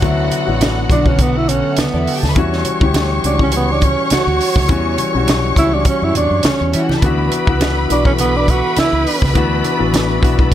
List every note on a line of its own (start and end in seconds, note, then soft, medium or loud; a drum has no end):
0.00 0.28 D2 loud
0.00 0.45 D3 medium
0.00 0.02 F#3 medium
0.00 0.34 F#3 medium
0.00 0.03 B3 medium
0.00 0.34 B3 medium
0.00 2.37 C#4 medium
0.00 0.92 D4 medium
0.00 0.04 E4 medium
0.00 0.35 E4 medium
0.00 1.83 F#4 medium
0.00 0.61 C#5 soft
0.00 0.78 E5 medium
0.00 1.83 F#5 loud
0.00 kick loud
0.00 closed hi-hat medium
0.00 muted conga medium
0.31 closed hi-hat medium
0.31 muted conga soft
0.45 0.85 A1 medium
0.45 0.78 D3 medium
0.45 0.78 F#3 medium
0.45 0.79 B3 medium
0.45 0.79 E4 medium
0.61 snare loud
0.61 closed hi-hat medium
0.61 high conga medium
0.89 1.60 B1 medium
0.89 1.01 D3 medium
0.89 1.01 F#3 medium
0.89 1.02 B3 medium
0.89 1.09 D4 medium
0.89 1.02 D4 medium
0.89 kick medium
0.89 closed hi-hat medium
1.04 1.89 D3 medium
1.04 1.90 F#3 medium
1.04 1.90 B3 medium
1.04 1.23 C#4 medium
1.04 1.91 D4 medium
1.04 kick medium
1.19 1.39 B3 medium
1.19 kick medium
1.19 closed hi-hat medium
1.19 muted conga soft
1.37 1.50 E4 medium
1.49 1.81 C#4 medium
1.49 2.36 A4 soft
1.49 closed hi-hat medium
1.49 muted conga soft
1.71 2.55 E5 soft
1.77 2.37 B3 medium
1.77 muted fretless electric bass stroke soft
1.77 snare loud
1.77 closed hi-hat medium
1.77 high conga medium
1.93 2.05 E2 medium
1.93 2.00 D4 soft
1.93 2.00 D5 medium
1.99 2.06 E4 medium
1.99 2.07 E5 medium
2.06 2.14 F#4 medium
2.06 2.14 F#5 medium
2.06 open hi-hat medium
2.14 2.22 G4 medium
2.14 2.23 G5 medium
2.22 2.34 D2 medium
2.22 2.29 A4 medium
2.22 2.29 A5 medium
2.22 snare soft
2.22 high conga medium
2.29 2.36 B4 medium
2.29 2.36 B5 medium
2.35 2.61 E2 loud
2.35 2.67 E3 medium
2.35 2.68 G3 medium
2.35 2.68 C#4 medium
2.35 2.69 F#4 loud
2.35 6.64 C#5 medium
2.35 6.65 C#6 loud
2.35 kick loud
2.35 closed hi-hat medium
2.35 muted conga medium
2.53 snare soft
2.65 closed hi-hat medium
2.65 muted conga soft
2.80 3.18 D2 medium
2.80 3.12 E3 medium
2.80 3.12 G3 medium
2.80 3.13 C#4 medium
2.80 3.13 G4 medium
2.80 kick medium
2.94 snare loud
2.94 closed hi-hat medium
2.94 high conga medium
3.23 3.94 C#2 medium
3.23 3.35 E3 medium
3.23 3.35 G3 medium
3.23 3.36 C#4 medium
3.23 3.39 D4 medium
3.23 3.36 F#4 medium
3.23 closed hi-hat medium
3.39 4.23 E3 medium
3.39 4.23 G3 medium
3.39 4.24 C#4 medium
3.39 4.25 F#4 medium
3.39 kick medium
3.43 3.54 C#4 medium
3.52 closed hi-hat medium
3.52 muted conga soft
3.56 3.73 B3 medium
3.72 3.86 D4 medium
3.81 4.14 C#4 medium
3.81 kick medium
3.81 closed hi-hat medium
3.81 muted conga soft
3.81 low conga medium
4.10 4.70 F#4 loud
4.10 muted fretless electric bass stroke soft
4.10 snare medium
4.10 closed hi-hat medium
4.10 high conga medium
4.27 4.38 D2 medium
4.41 open hi-hat medium
4.56 4.68 D2 medium
4.56 kick medium
4.56 snare soft
4.56 high conga medium
4.68 4.95 E2 loud
4.68 5.00 E3 medium
4.68 5.01 G3 medium
4.68 5.01 C#4 medium
4.68 5.02 F#4 medium
4.68 kick loud
4.68 closed hi-hat medium
4.68 muted conga medium
4.98 closed hi-hat medium
4.98 muted conga soft
5.13 5.51 B1 medium
5.13 5.45 E3 medium
5.13 5.45 G3 medium
5.13 5.46 C#4 medium
5.13 5.47 F#4 medium
5.28 snare loud
5.28 closed hi-hat medium
5.28 high conga medium
5.56 5.82 C#2 medium
5.56 5.68 E3 medium
5.56 5.68 G3 medium
5.56 5.69 C#4 medium
5.56 5.75 E4 loud
5.56 5.69 F#4 medium
5.56 kick medium
5.56 closed hi-hat medium
5.71 6.56 E3 medium
5.71 6.56 G3 medium
5.71 6.56 C#4 medium
5.71 5.86 D4 medium
5.71 6.57 F#4 medium
5.85 6.06 C#4 medium
5.85 kick medium
5.85 closed hi-hat medium
5.85 muted conga soft
6.02 6.13 F#2 medium
6.02 6.16 E4 medium
6.15 6.29 E2 medium
6.15 6.47 D4 medium
6.15 closed hi-hat medium
6.15 muted conga soft
6.15 low conga medium
6.30 6.42 F#2 medium
6.43 7.03 C#4 medium
6.43 muted fretless electric bass stroke soft
6.43 snare loud
6.43 closed hi-hat medium
6.43 high conga medium
6.61 6.72 E2 medium
6.73 6.99 E3 medium
6.73 6.81 E4 medium
6.73 6.81 E5 medium
6.73 closed hi-hat medium
6.81 6.89 F#4 medium
6.81 6.89 F#5 medium
6.89 6.96 G4 medium
6.89 6.96 G5 medium
6.89 snare soft
6.89 high conga medium
6.96 7.02 A4 medium
6.96 7.03 A5 medium
7.01 7.28 D2 loud
7.01 7.34 E3 medium
7.01 7.34 B3 medium
7.01 7.35 D4 medium
7.01 10.54 F#4 medium
7.01 7.35 F#4 medium
7.01 10.54 B4 medium
7.01 10.54 E5 medium
7.01 10.54 B5 loud
7.01 9.33 B5 medium
7.01 10.54 D6 medium
7.01 kick loud
7.01 closed hi-hat medium
7.01 muted conga medium
7.32 closed hi-hat medium
7.32 muted conga soft
7.46 7.90 C#2 medium
7.46 7.78 E3 medium
7.46 7.78 B3 medium
7.46 7.79 D4 medium
7.46 7.79 F#4 medium
7.46 kick medium
7.61 snare loud
7.61 closed hi-hat medium
7.61 high conga medium
7.89 8.60 B1 medium
7.89 8.01 E3 medium
7.89 8.01 B3 medium
7.89 8.02 D4 medium
7.89 8.05 D4 medium
7.89 8.02 F#4 medium
7.89 closed hi-hat medium
8.04 8.89 E3 medium
8.04 8.89 B3 medium
8.04 8.12 C#4 medium
8.04 8.90 D4 medium
8.04 8.90 A4 medium
8.04 kick medium
8.18 8.38 B3 medium
8.18 closed hi-hat medium
8.18 muted conga medium
8.37 8.52 D4 medium
8.48 8.78 F#4 loud
8.48 kick medium
8.48 closed hi-hat medium
8.48 muted conga soft
8.48 low conga medium
8.76 9.33 E4 medium
8.76 muted fretless electric bass stroke soft
8.76 snare loud
8.76 closed hi-hat medium
8.76 high conga medium
8.92 9.04 C#2 medium
9.07 open hi-hat medium
9.22 9.34 C#2 medium
9.22 kick medium
9.22 snare soft
9.22 high conga medium
9.34 9.61 D2 loud
9.34 9.66 E3 medium
9.34 9.67 B3 medium
9.34 9.67 D4 medium
9.34 9.68 F#4 loud
9.34 10.54 A5 medium
9.34 kick loud
9.34 closed hi-hat medium
9.34 muted conga medium
9.64 closed hi-hat medium
9.64 muted conga soft
9.77 10.17 A1 medium
9.77 10.10 E3 medium
9.77 10.11 B3 medium
9.77 10.11 D4 medium
9.77 10.12 F#4 medium
9.94 snare loud
9.94 closed hi-hat medium
9.94 high conga medium
10.20 10.54 B1 medium
10.20 10.33 E3 medium
10.20 10.33 B3 medium
10.20 10.34 D4 medium
10.20 10.34 F#4 medium
10.20 kick medium
10.24 closed hi-hat medium
10.36 10.54 E3 medium
10.36 10.54 B3 medium
10.36 10.54 D4 medium
10.36 10.54 F#4 medium
10.36 kick medium